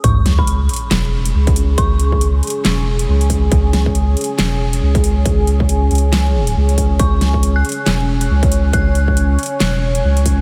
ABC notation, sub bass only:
X:1
M:4/4
L:1/8
Q:"Swing 16ths" 1/4=138
K:C#m
V:1 name="Sub bass" clef=bass
C,,3 z E,,,2 C,,2 | C,,3 z E,,,2 C,,2 | C,,3 z E,,,2 C,,2 | C,,3 C,,3 C,,2 |
C,,3 z E,,,2 C,,2 | C,,3 z E,,,2 C,,2 |]